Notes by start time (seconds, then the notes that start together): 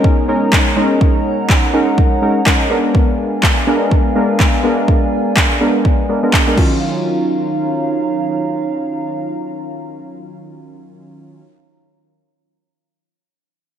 Already playing: G#3 B3 C#4 D#4 A#4 C#5 D#5 G#5 A#5
0.04 kick
0.28 G#3 C#4 D#4 A#4
0.53 kick, clap
0.76 G#3 C#4 D#4 A#4
1.01 F#5, kick
1.50 kick, clap
1.73 G#3 C#4 D#4 A#4
1.98 kick
2.22 G#3 C#4 D#4 A#4
2.46 G#3 C#4 D#4 A#4, kick, clap
2.70 G#3 B3 D4 A#4 D5 F5 G#5
2.95 kick
3.43 kick, clap
3.67 G#3 B3 D4 A#4
3.91 kick
4.15 G#3 B3 D4 A#4
4.40 kick, clap
4.63 G#3 B3 D4 A#4
4.88 kick
5.37 kick, clap
5.60 G#3 B3 D4 A#4
5.85 kick
6.09 G#3 B3 D4 A#4
6.23 G#3 B3 D4 A#4
6.33 kick, clap
6.47 G#3 B3 D4 A#4
6.56 D#3 F#3 C#4 D#4 F4 C#5 F5 A#5, kick, crash